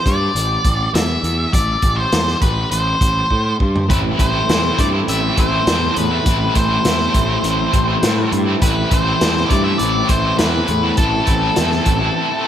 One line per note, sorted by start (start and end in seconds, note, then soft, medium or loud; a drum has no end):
0.06 0.27 G2 medium
0.06 0.90 D5 medium
0.06 kick medium
0.06 closed hi-hat medium
0.35 0.56 A1 medium
0.35 closed hi-hat medium
0.65 0.86 A1 medium
0.65 kick medium
0.65 closed hi-hat medium
0.94 1.15 E2 medium
0.94 1.53 E5 loud
0.94 snare loud
0.94 closed hi-hat medium
1.23 1.45 E2 medium
1.23 closed hi-hat medium
1.53 1.75 A1 loud
1.53 1.99 D5 loud
1.53 kick loud
1.53 closed hi-hat medium
1.82 2.04 A1 medium
1.82 kick medium
1.82 closed hi-hat medium
1.96 2.38 C5 medium
2.12 2.34 E2 medium
2.12 snare loud
2.12 closed hi-hat medium
2.27 snare soft
2.42 2.63 A1 medium
2.42 2.71 B4 medium
2.42 kick medium
2.42 closed hi-hat medium
2.71 2.93 A1 medium
2.71 3.56 C5 medium
2.71 closed hi-hat medium
3.01 3.22 A1 medium
3.01 kick medium
3.01 closed hi-hat medium
3.30 3.52 A2 medium
3.30 kick soft
3.60 3.82 G2 medium
3.60 kick medium
3.76 floor tom medium
3.88 4.11 A1 medium
3.88 4.47 A2 medium
3.88 4.18 E3 medium
3.88 4.19 A3 medium
3.88 4.19 C4 medium
3.88 4.20 E4 medium
3.88 3.98 B4 medium
3.88 kick medium
3.88 closed hi-hat medium
4.18 4.41 A1 medium
4.18 4.48 E3 medium
4.18 4.49 A3 medium
4.18 4.49 C4 medium
4.18 4.50 E4 medium
4.18 4.80 C5 medium
4.18 kick medium
4.18 closed hi-hat medium
4.48 4.70 E2 medium
4.48 5.66 A2 medium
4.48 4.77 E3 medium
4.48 4.65 A3 medium
4.48 4.64 C4 medium
4.48 4.62 E4 medium
4.48 snare loud
4.48 closed hi-hat medium
4.63 4.78 A3 medium
4.63 4.79 C4 medium
4.63 4.80 E4 medium
4.77 5.00 G2 medium
4.77 5.36 E3 medium
4.77 4.94 A3 medium
4.77 4.93 C4 medium
4.77 4.92 E4 medium
4.77 4.88 D5 medium
4.77 kick medium
4.77 closed hi-hat medium
4.92 5.24 A3 medium
4.92 5.23 C4 medium
4.92 5.21 E4 medium
5.08 5.29 A1 medium
5.08 5.39 E5 medium
5.08 closed hi-hat medium
5.21 5.37 A3 medium
5.21 5.38 C4 medium
5.21 5.39 E4 medium
5.36 5.59 A1 medium
5.36 5.67 E3 medium
5.36 5.67 A3 medium
5.36 5.68 C4 medium
5.36 5.68 E4 medium
5.36 5.98 C5 medium
5.36 kick medium
5.36 closed hi-hat medium
5.66 5.88 E2 medium
5.66 6.24 A2 medium
5.66 5.96 E3 medium
5.66 5.83 A3 medium
5.66 5.82 C4 medium
5.66 5.80 E4 loud
5.66 snare loud
5.66 closed hi-hat medium
5.81 5.96 A3 medium
5.81 5.96 C4 medium
5.81 5.96 E4 medium
5.96 6.18 E2 medium
5.96 6.52 B4 medium
5.96 muted overdriven electric guitar stroke soft
5.96 closed hi-hat medium
6.10 6.25 A3 medium
6.10 6.26 C4 medium
6.10 6.26 E4 medium
6.24 6.47 A1 loud
6.24 6.84 A2 medium
6.24 6.53 E3 medium
6.24 6.54 A3 medium
6.24 6.56 C4 medium
6.24 6.56 E4 medium
6.24 kick loud
6.24 closed hi-hat medium
6.54 6.77 A1 medium
6.54 6.84 E3 medium
6.54 6.85 A3 medium
6.54 6.86 C4 medium
6.54 6.86 E4 medium
6.54 8.29 C5 medium
6.54 kick medium
6.54 closed hi-hat medium
6.84 7.07 E2 medium
6.84 8.02 A2 medium
6.84 7.13 E3 medium
6.84 7.01 A3 medium
6.84 7.00 C4 medium
6.84 6.99 E4 loud
6.84 snare loud
6.84 closed hi-hat medium
6.99 7.14 A3 medium
6.99 7.15 C4 medium
6.99 7.15 E4 medium
6.99 snare soft
7.13 7.36 A1 medium
7.13 7.71 E3 medium
7.13 7.30 A3 medium
7.13 7.29 C4 medium
7.13 7.28 E4 medium
7.13 kick medium
7.13 closed hi-hat medium
7.28 7.59 A3 medium
7.28 7.58 C4 medium
7.28 7.57 E4 medium
7.44 7.65 A1 medium
7.44 closed hi-hat medium
7.57 7.72 A3 medium
7.57 7.73 C4 medium
7.57 7.73 E4 medium
7.72 7.95 A1 medium
7.72 8.02 E3 medium
7.72 8.02 A3 medium
7.72 8.03 C4 medium
7.72 8.04 E4 medium
7.72 kick medium
7.72 closed hi-hat medium
8.02 8.61 A2 medium
8.02 8.24 A2 medium
8.02 8.32 E3 medium
8.02 8.19 A3 medium
8.02 8.18 C4 medium
8.02 8.17 E4 medium
8.02 snare loud
8.02 closed hi-hat medium
8.17 8.32 A3 medium
8.17 8.32 C4 medium
8.17 8.33 E4 medium
8.32 8.54 G2 medium
8.32 muted overdriven electric guitar stroke soft
8.32 closed hi-hat medium
8.46 8.63 A3 medium
8.46 8.63 C4 medium
8.46 8.64 E4 medium
8.62 8.83 A1 loud
8.62 9.20 A2 medium
8.62 8.90 E3 medium
8.62 8.91 A3 medium
8.62 8.92 C4 medium
8.62 8.93 E4 medium
8.62 8.90 B4 medium
8.62 kick medium
8.62 closed hi-hat medium
8.91 9.13 A1 medium
8.91 9.21 E3 medium
8.91 9.22 A3 medium
8.91 9.22 C4 medium
8.91 9.23 E4 medium
8.91 9.52 C5 medium
8.91 kick medium
8.91 closed hi-hat medium
9.21 9.43 E2 medium
9.21 10.38 A2 medium
9.21 9.49 E3 medium
9.21 9.38 A3 medium
9.21 9.37 C4 medium
9.21 9.35 E4 medium
9.21 snare loud
9.21 closed hi-hat medium
9.36 9.50 A3 medium
9.36 9.51 C4 medium
9.36 9.52 E4 medium
9.36 snare soft
9.49 9.72 G2 medium
9.49 10.09 E3 medium
9.49 9.66 A3 medium
9.49 9.66 C4 medium
9.49 9.64 E4 medium
9.49 9.64 D5 medium
9.49 kick medium
9.49 closed hi-hat medium
9.64 9.96 A3 soft
9.64 9.95 C4 medium
9.64 9.93 E4 medium
9.64 9.78 E5 medium
9.78 10.02 A1 medium
9.78 10.09 D5 medium
9.78 closed hi-hat medium
9.94 10.09 A3 medium
9.94 10.11 C4 medium
9.94 10.11 E4 medium
10.08 10.31 A1 medium
10.08 10.38 E3 medium
10.08 10.39 A3 medium
10.08 10.40 C4 medium
10.08 10.40 E4 medium
10.08 10.38 C5 medium
10.08 kick medium
10.08 closed hi-hat medium
10.38 10.61 E2 medium
10.38 10.97 A2 medium
10.38 10.68 E3 medium
10.38 10.54 A3 medium
10.38 10.53 C4 medium
10.38 10.52 E4 medium
10.38 10.97 B4 medium
10.38 snare loud
10.38 closed hi-hat medium
10.53 10.68 A3 medium
10.53 10.68 C4 medium
10.53 10.69 E4 medium
10.68 10.90 E2 medium
10.68 muted overdriven electric guitar stroke soft
10.68 closed hi-hat soft
10.83 10.97 A3 medium
10.83 10.98 C4 medium
10.83 10.98 E4 medium
10.97 11.20 A1 medium
10.97 11.55 A2 medium
10.97 11.25 E3 medium
10.97 11.26 A3 medium
10.97 11.26 C4 medium
10.97 11.27 E4 medium
10.97 12.48 A4 medium
10.97 kick loud
10.97 closed hi-hat medium
11.26 11.49 A1 medium
11.26 11.56 E3 medium
11.26 11.56 A3 medium
11.26 11.57 C4 medium
11.26 11.58 E4 medium
11.26 kick medium
11.26 closed hi-hat medium
11.56 11.79 E2 medium
11.56 12.01 A2 medium
11.56 11.85 E3 medium
11.56 11.73 A3 medium
11.56 11.71 C4 medium
11.56 11.70 E4 medium
11.56 snare loud
11.56 closed hi-hat medium
11.71 11.86 A3 medium
11.71 11.87 C4 medium
11.71 11.87 E4 medium
11.71 snare soft
11.86 12.08 A1 medium
11.86 12.31 E3 medium
11.86 12.01 A3 medium
11.86 12.01 C4 medium
11.86 11.99 E4 medium
11.86 kick medium
11.86 closed hi-hat medium
12.00 12.32 A3 soft
12.00 12.31 C4 medium
12.00 12.30 E4 medium
12.31 12.45 A3 medium
12.31 12.46 C4 medium
12.31 12.46 E4 medium